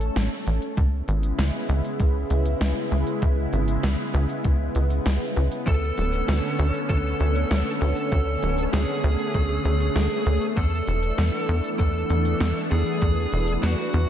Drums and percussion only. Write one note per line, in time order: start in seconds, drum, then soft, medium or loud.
0.01 closed hi-hat medium
0.16 snare loud
0.16 closed hi-hat medium
0.47 closed hi-hat medium
0.62 closed hi-hat medium
0.77 kick loud
0.77 closed hi-hat medium
1.08 closed hi-hat medium
1.23 closed hi-hat medium
1.39 snare loud
1.39 closed hi-hat medium
1.69 closed hi-hat medium
1.85 closed hi-hat medium
2.00 kick loud
2.00 closed hi-hat medium
2.30 closed hi-hat medium
2.46 closed hi-hat medium
2.61 snare loud
2.61 closed hi-hat medium
2.92 closed hi-hat medium
3.07 closed hi-hat medium
3.22 kick loud
3.22 closed hi-hat medium
3.53 closed hi-hat medium
3.68 closed hi-hat medium
3.83 snare loud
3.83 closed hi-hat medium
4.14 closed hi-hat medium
4.29 closed hi-hat medium
4.45 kick loud
4.45 closed hi-hat medium
4.75 closed hi-hat medium
4.90 closed hi-hat medium
5.06 snare loud
5.06 closed hi-hat medium
5.36 closed hi-hat medium
5.52 closed hi-hat medium
5.67 kick loud
5.67 closed hi-hat medium
5.98 closed hi-hat medium
6.13 closed hi-hat medium
6.28 snare loud
6.28 closed hi-hat medium
6.59 closed hi-hat medium
6.74 closed hi-hat medium
6.89 kick loud
6.89 closed hi-hat medium
7.20 closed hi-hat medium
7.36 closed hi-hat medium
7.51 snare loud
7.51 closed hi-hat medium
7.81 closed hi-hat medium
7.97 closed hi-hat medium
8.12 kick loud
8.12 closed hi-hat medium
8.43 closed hi-hat medium
8.58 closed hi-hat medium
8.73 snare loud
8.73 closed hi-hat medium
9.04 closed hi-hat medium
9.19 closed hi-hat medium
9.34 kick loud
9.34 closed hi-hat medium
9.65 closed hi-hat medium
9.80 closed hi-hat medium
9.96 snare loud
9.96 closed hi-hat medium
10.26 closed hi-hat medium
10.42 closed hi-hat medium
10.57 kick loud
10.57 closed hi-hat medium
10.87 closed hi-hat medium
11.03 closed hi-hat medium
11.18 snare loud
11.18 closed hi-hat medium
11.49 closed hi-hat medium
11.64 closed hi-hat medium
11.79 kick loud
11.79 closed hi-hat medium
12.10 closed hi-hat medium
12.25 closed hi-hat medium
12.40 snare loud
12.40 closed hi-hat medium
12.71 closed hi-hat medium
12.86 closed hi-hat medium
13.02 kick loud
13.02 closed hi-hat medium
13.32 closed hi-hat medium
13.48 closed hi-hat medium
13.63 snare loud
13.63 closed hi-hat medium
13.94 closed hi-hat medium